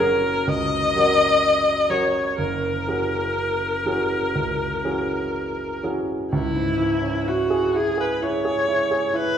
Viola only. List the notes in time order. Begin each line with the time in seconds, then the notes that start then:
0.00 A#4
0.48 D#5
1.90 C#5
2.39 A#4
6.32 E4
7.28 F#4
7.75 G#4
8.01 B4
8.22 C#5
9.16 B4